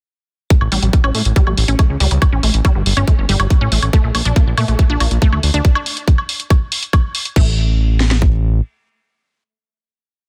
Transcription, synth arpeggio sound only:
0.50 A3
0.72 G3
0.83 G3
1.04 C#4
1.15 A3
1.36 G3
1.47 G3
1.68 C#4
1.79 A3
2.00 G3
2.11 G3
2.33 C#4
2.43 A3
2.65 G3
2.75 G3
2.97 C#4
3.07 A3
3.29 G3
3.40 G3
3.61 C#4
3.72 A3
3.93 A3
4.04 A3
4.25 D4
4.36 A#3
4.58 A3
4.68 A3
4.90 D4
5.00 A#3
5.22 A3
5.33 A3
5.54 D4
7.36 A3

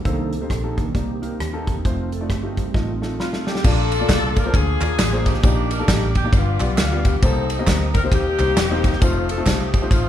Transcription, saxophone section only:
3.20 F4
3.47 G4
3.65 D4 F4 A4
4.37 A#4
4.54 F4 G#4
5.26 D4 D#4 G4
5.71 A#4
5.89 G4
6.16 G4
6.33 B3 D4 F4
6.78 F4
7.05 G4
7.23 D#4 A4
7.94 A#4
8.12 A#3 D#4 G4
9.01 A3 C4 F4
9.28 A4
9.47 G4
9.74 G4
9.91 A3 C4 F4

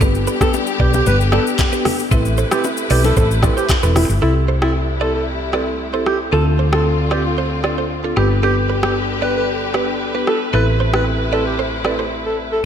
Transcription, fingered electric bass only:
Already playing: G1
0.80 B1
1.06 G1
2.11 A1
2.90 B1
3.17 A1
3.83 E1
4.09 G1
4.22 C2
6.33 D2
8.17 G1
10.53 A1

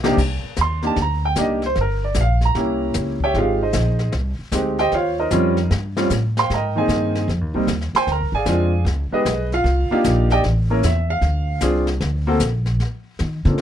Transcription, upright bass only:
Already playing: B1
0.17 C2
0.44 muted upright bass stroke
0.58 D#2
0.96 D2
1.36 C2
1.76 G1
2.15 A#1
2.55 C2
2.95 C#2
3.34 G#1
3.74 A#1
4.13 C2
4.39 muted upright bass stroke
4.52 D2
4.92 D#2
5.31 F2
5.71 G2
6.10 A2
6.50 G#2
6.88 G2
7.28 F2
7.41 D#2
7.54 C2
7.67 D#2
7.93 muted upright bass stroke
8.07 D2
8.21 C2
8.32 G#1
8.46 F2
8.85 C#2
9.11 muted upright bass stroke
9.25 B1
9.64 C2
9.90 muted upright bass stroke
10.05 A#1
10.44 A1
10.83 E2
11.21 D2
11.61 C2
12.01 D2
12.39 A#1
13.20 D#3
13.45 C#3

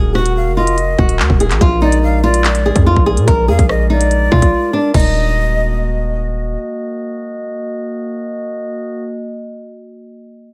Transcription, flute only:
0.15 F#5
0.36 F5
0.56 D#5
1.82 D5
2.03 F5
2.24 D5
3.49 F5
3.69 D#5
3.90 D5
4.94 D#5

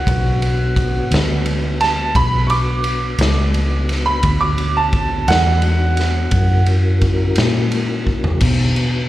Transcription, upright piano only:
Already playing: F#4
1.81 A5
2.16 B5
2.47 C#6 D6
4.06 B5
4.41 D6
4.77 A5
5.28 F#5

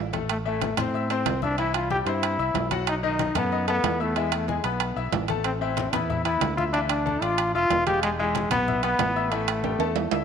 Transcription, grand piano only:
0.13 A3 A4
0.45 E3 E4 E5
0.78 C4 C5 C6
0.94 E4 E5 E6
1.10 C4 C5 C6
1.42 E4 E5 E6
1.59 E3 E4 E5
1.91 G3 G4 G5
2.07 C4 C5 C6
2.39 E4 E5 E6
2.72 F#3 F#4 F#5
3.03 D#3 D#4 D#5
3.36 A3 A4 A5
3.52 D#4 D#5 D#6
3.68 A3 A4 A5
4.00 E4 E5 E6
4.16 E3 E4 E5
4.48 G#3 G#4 G#5
4.64 B3 B4 B5
4.96 E4 E5 E6
5.29 A3 A4 A5
5.61 E3 E4 E5
5.94 B3 B4 B5
6.10 E4 E5 E6
6.25 B3 B4 B5
6.58 E4 E5 E6
6.73 E3 E4 E5
7.06 A3 A4 A5
7.22 D4 D5 D6
7.55 F4 E5 E6
7.87 G#3 G#4 G#5
8.19 E3 E4 E5
8.52 B3 B4 B5
8.68 E4 E5 E6
8.84 B3 B4 B5
9.16 E4 E5 E6
9.32 E3 E4 E5
9.63 G3 G4 G5
9.79 A3 A4 A5
10.12 E4 E5 E6

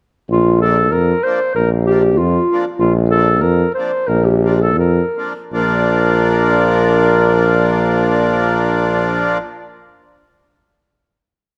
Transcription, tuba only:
0.29 A#1
0.92 F2
1.56 A#1
2.18 F2
2.80 A#1
3.43 F2
4.08 A#1
4.76 F2
5.52 A#1

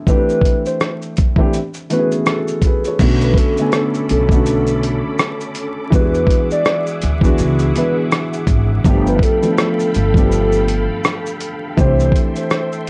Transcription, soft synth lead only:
0.09 B4
0.67 C5
1.92 B4
3.23 B4
3.38 A4
4.11 A4
5.94 B4
6.52 D5
7.78 B4
9.08 B4
9.23 A4
9.97 A4
11.80 C5
12.38 C5

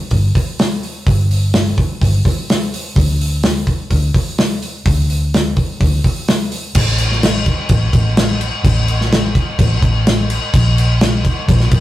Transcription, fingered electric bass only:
0.11 G1
1.07 G1
2.01 G1
2.96 D2
3.90 D2
4.85 D2
5.80 D2
6.75 A1
7.69 A1
7.94 A1
8.64 A1
9.59 A1
9.82 A1
10.54 A#1
11.48 A#1
11.71 A#1

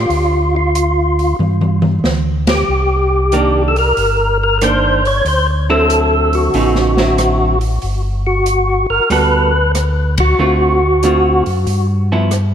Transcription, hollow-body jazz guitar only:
3.33 D#3 A#3 D4
4.62 D#3 A#3 D4
5.70 D3 F#3 C4 E4
6.55 C#3 F3 B3 D#4
6.98 D3 F#3 C4 E4
9.10 G3 B3 F#4 A4
10.39 D3 A3 C4 F4
11.04 D3 A3 C4 F4
12.12 F3 B3 E4

